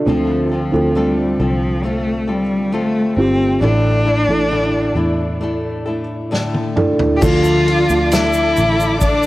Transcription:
0.06 D2 D3 F3 A3 C4 F4 A4
0.52 F3 C4 F4 A4
0.72 D2 C4 F4 A4
0.95 D3 G3 A3 C4 F4 A4
1.40 C2 F3 C4 F4 A4
1.84 A3 C4 F4 A4
2.28 G3 C4 F4 A4
2.72 D3 A3 C4 F4 A4
3.17 G1 C4 F4 G4
3.61 A1 A2 D3 A3 D4 E4 A4
4.05 A3 D4 E4 A4
4.28 A1 D4 E4 A4
4.51 A2 D3 A3 D4 E4 A4
4.95 E2 A3 D4 E4 A4
5.41 A3 D4 E4 A4
5.86 A3 D4 E4 A4
6.31 A2 D3 A3 D4 E4 A4, snare
6.54 high tom
6.76 D4 E4 A4, mid tom
6.99 floor tom
7.16 G4
7.21 D2 D3 F3 A3 D4 F4 A4 D5 A5 D6, kick, crash, shaker
7.44 shaker
7.67 D4 F4 A4, ride
7.89 D2, shaker
8.12 A3 D4 E4 A4, snare, ride, shaker
8.33 shaker
8.56 A1, ride, shaker
8.80 shaker
9.01 D4, kick, ride, shaker
9.23 shaker

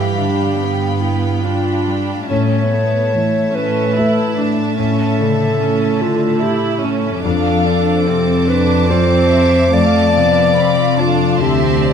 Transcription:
Already playing: G2 E3 F3 G3 G4 B4 F5 G5 B5
0.19 D3 D4
0.60 B3
1.02 E4 B4
1.44 D4 F4
1.87 G3
2.29 A2 C#4 C#5 E5 A5
2.71 A3 B3
3.12 E3 A3
3.54 C#4 A4 B4
3.97 A3 E4 A4 E5
4.38 A3 D4
4.78 A2 C#4 A4
5.20 C#3 D3
5.60 C#4
6.02 D3 F4 A4
6.42 E4 G4
6.83 A3 C#4
7.23 F2 D4 A4 F5 D6
7.66 C4
8.05 C3 C4 F4 C5 A5
8.48 D4 A4 B4
8.89 C4 F4 A4 C5 D5
9.31 C4 E5
9.73 F2 A3 D5 F5 A5
10.15 C3 B3 F5
10.57 C4 B5
10.99 D4 F4 A4 A5
11.42 D2 C4 E4 G4 E5 C6
11.86 C4 D5

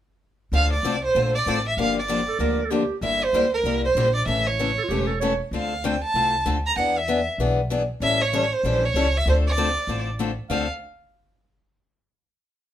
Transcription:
0.52 D2 D3 A3 C4 F4 A4 F5
0.73 D5
0.83 C2 D3 A3 C4 F4 A4
1.05 C5
1.15 A#1 D3 A3 C4 F4 A4
1.35 D5
1.46 A1 D3 A3 C4 F4 A4
1.68 E5
1.77 G1 D3 F3 A#3 D4 G4 F5
1.99 D5
2.08 D3 F3 A#3 D4 G4
2.28 A4
2.39 D2 D3 F3 A#3 D4 G4 A#4
2.64 A4
2.71 D3 F3 A#3 D4 G4
3.01 G1 D3 G3 A#3 E4 G4 E5
3.24 C5
3.33 D2 D3 G3 A#3 E4 G4
3.54 A#4
3.63 C2 D3 G3 A#3 E4 G4
3.85 C5
3.95 A#1 D3 G3 A#3 E4 G4
4.15 D5
4.26 A1 C#3 E3 A3 C#4 A4 E5
4.47 C#5
4.59 C#3 E3 A3 C#4 A4
4.78 A4
4.84 F4
4.89 E1 C#3 E3 A3 C#4 G4 A4
5.07 A4
5.20 C#3 E3 A3 C#4 A4 C#5
5.51 D2 D3 A3 C4 F4 A4
5.56 F5
5.84 D3 A3 C4 F4 A4 G5
6.04 A5
6.14 C2 D3 A3 C4 F4 A4
6.45 D2 D3 A3 C4 F4 A4
6.66 A#5
6.76 E2 E3 B3 D4 G#4 F#5
6.98 E5
7.08 E3 B3 D4 G#4
7.38 B1 E3 B3 D4 G#4
7.70 E3 B3 D4 G#4
8.00 A1 E3 G3 C#4 E4 A4 E5
8.22 C#5
8.33 E3 G3 C#4 E4 A4
8.54 C5
8.63 A#1 E3 G3 C#4 E4 A4
8.85 C#5
8.94 C#2 E3 G3 C#4 E4 A4
9.18 E5
9.26 D2 D3 A3 C4 F4 A4 C5
9.47 D5
9.57 D3 A3 C4 F4 A4
9.87 A1 D3 A3 C4 F4 A4
10.19 D3 A3 C4 F4 A4
10.49 D2 D3 A3 C4 F4 A4 F5

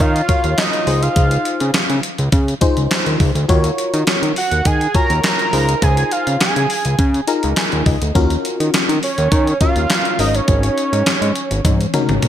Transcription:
0.00 D#3 F5, kick, closed hi-hat
0.16 closed hi-hat
0.28 F4 F#4 A#4 C#5, kick, closed hi-hat
0.44 D#2, closed hi-hat
0.58 D#5, snare, clap, closed hi-hat
0.73 closed hi-hat
0.86 C#2 D#4 F4 G#4 C5, open hi-hat
1.02 F5, closed hi-hat
1.16 C#2, kick, closed hi-hat
1.31 closed hi-hat
1.45 closed hi-hat
1.60 C#3, closed hi-hat
1.74 C#3, snare, clap, closed hi-hat
1.90 C#3, closed hi-hat
2.03 closed hi-hat
2.18 C#2, closed hi-hat
2.32 C#3, kick, closed hi-hat
2.48 closed hi-hat
2.61 D#4 F4 G#4 C5, kick, closed hi-hat
2.77 C#2, closed hi-hat
2.91 snare, clap, closed hi-hat
3.06 D#2, closed hi-hat
3.20 C#2, kick, open hi-hat
3.35 D2, closed hi-hat
3.48 D#2 F4 F#4 A#4 C#5, kick, closed hi-hat
3.64 closed hi-hat
3.78 closed hi-hat
3.94 D#3, closed hi-hat
4.07 D#3, snare, clap, closed hi-hat
4.23 D#3, closed hi-hat
4.36 F#5, open hi-hat
4.51 D#2, closed hi-hat
4.65 D#3 G#5, kick, closed hi-hat
4.81 closed hi-hat
4.94 F4 F#4 A#4 C#5 A#5, kick, closed hi-hat
5.10 D#2, closed hi-hat
5.24 A#5, snare, clap, closed hi-hat
5.39 closed hi-hat
5.53 C#2 D#4 F4 G#4 C5, open hi-hat
5.69 closed hi-hat
5.82 C#2 G#5, kick, closed hi-hat
5.97 closed hi-hat
6.11 F5, closed hi-hat
6.27 C#3, closed hi-hat
6.41 C#3 G#5, snare, clap, closed hi-hat
6.56 C#3, closed hi-hat
6.70 open hi-hat
6.85 C#2, closed hi-hat
6.99 C#3, kick, closed hi-hat
7.14 closed hi-hat
7.27 D#4 F4 G#4 A#4 A#5, closed hi-hat
7.43 C#2, closed hi-hat
7.56 G#5, snare, clap, closed hi-hat
7.72 D#2, closed hi-hat
7.86 C#2 D#5, kick, open hi-hat
8.02 D2, closed hi-hat
8.15 D#2 C#4 F4 F#4 A#4, kick, closed hi-hat
8.30 closed hi-hat
8.45 closed hi-hat
8.60 D#3, closed hi-hat
8.74 D#3, snare, clap, closed hi-hat
8.89 D#3, closed hi-hat
9.03 C#5, open hi-hat
9.18 D#2, closed hi-hat
9.32 D#3, kick, closed hi-hat
9.47 closed hi-hat
9.61 C#4 F4 F#4 A#4 F5, kick, closed hi-hat
9.76 D#2, closed hi-hat
9.90 snare, clap, closed hi-hat
10.05 closed hi-hat
10.19 G#1 C#4 D#4 F#4 A#4 D#5, open hi-hat
10.35 C#5, closed hi-hat
10.48 G#1, kick, closed hi-hat
10.63 closed hi-hat
10.78 closed hi-hat
10.93 G#2, closed hi-hat
11.06 G#2, snare, clap, closed hi-hat
11.22 G#2, closed hi-hat
11.36 closed hi-hat
11.51 G#1, closed hi-hat
11.65 G#2, kick, closed hi-hat, high tom
11.81 closed hi-hat
11.94 C#4 D#4 F#4 A#4, closed hi-hat, mid tom
12.09 G#1, closed hi-hat, mid tom
12.22 closed hi-hat, mid tom

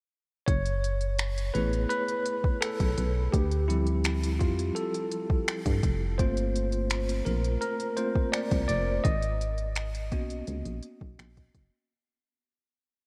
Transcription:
0.46 F#1 C#5, kick, closed hi-hat
0.66 closed hi-hat
0.84 closed hi-hat
1.01 closed hi-hat
1.19 finger snap, closed hi-hat
1.38 closed hi-hat
1.54 A1 A3 B3 E4 G#4 B4, closed hi-hat
1.73 closed hi-hat
1.89 B4, closed hi-hat
2.08 closed hi-hat
2.26 closed hi-hat
2.44 kick
2.61 A4, finger snap, closed hi-hat
2.80 B1, kick, closed hi-hat
2.98 B1, closed hi-hat
3.32 D2 G4, kick, closed hi-hat
3.51 closed hi-hat
3.68 F3 G3 C4 E4, closed hi-hat
3.87 closed hi-hat
4.04 finger snap, closed hi-hat
4.23 closed hi-hat
4.39 F2 F4, kick, closed hi-hat
4.59 closed hi-hat
4.75 A4, closed hi-hat
4.94 closed hi-hat
5.12 closed hi-hat
5.30 kick
5.48 finger snap, closed hi-hat
5.66 G2, kick, closed hi-hat
5.83 F1, kick, closed hi-hat
6.18 G1 A3 A#3 C4 F4 C5, kick, closed hi-hat
6.37 closed hi-hat
6.56 closed hi-hat
6.72 closed hi-hat
6.90 finger snap, closed hi-hat
7.09 closed hi-hat
7.25 A#1 A#4, closed hi-hat
7.44 closed hi-hat
7.61 A#4, closed hi-hat
7.80 closed hi-hat
7.97 A3 A#3 C4 F4 C5, closed hi-hat
8.15 kick
8.32 D5, finger snap, closed hi-hat
8.51 C2, kick, closed hi-hat
8.68 F1 D5, closed hi-hat
9.04 G#1 D#5, kick, closed hi-hat
9.22 closed hi-hat
9.41 closed hi-hat
9.58 closed hi-hat
9.75 finger snap, closed hi-hat
9.95 closed hi-hat
10.12 B1 A#3 B3 C#4 F#4, kick, closed hi-hat
10.30 closed hi-hat
10.47 C#2, closed hi-hat
10.65 A#1, closed hi-hat
10.83 closed hi-hat
11.01 B1, kick
11.19 A#1, finger snap, closed hi-hat
11.37 kick, closed hi-hat
11.55 F#1, kick, closed hi-hat

